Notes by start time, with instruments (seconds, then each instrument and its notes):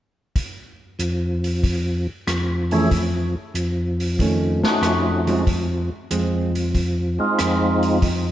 0.36 kick, open hi-hat
0.99 tonewheel organ F2, closed hi-hat
1.44 open hi-hat
1.64 kick, open hi-hat
2.27 tonewheel organ F2, cross-stick, closed hi-hat
2.71 hollow-body jazz guitar E3 A3 C#4, tonewheel organ A3 C#4 E4 G#4, open hi-hat
2.91 kick, open hi-hat
3.54 tonewheel organ F2, closed hi-hat
4.00 open hi-hat
4.19 hollow-body jazz guitar D#3 A3 C#4, kick, open hi-hat
4.64 tonewheel organ A3 C#4 D#4 F#4, snare
4.82 tonewheel organ F2, cross-stick, closed hi-hat
5.27 hollow-body jazz guitar F3 G#3 C4, open hi-hat
5.47 kick, open hi-hat
6.11 tonewheel organ F2, hollow-body jazz guitar F3 G#3 C4, closed hi-hat
6.55 open hi-hat
6.74 kick, open hi-hat
7.19 tonewheel organ G#3 C4 D#4 F4
7.39 tonewheel organ F2, cross-stick, closed hi-hat
7.83 open hi-hat
8.02 kick, open hi-hat